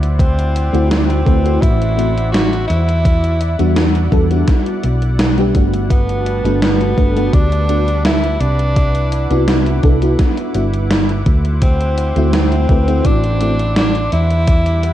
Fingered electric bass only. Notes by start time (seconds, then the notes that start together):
Already playing: D2
0.74 D2
1.27 D2
1.62 A1
2.70 E2
3.60 E2
4.12 E2
4.84 B1
5.55 G1
6.45 G1
6.98 G1
7.33 D2
8.40 C2
9.31 C2
9.83 C2
10.55 G1
11.26 D2
12.16 D2
12.69 D2
13.05 A1
14.12 E2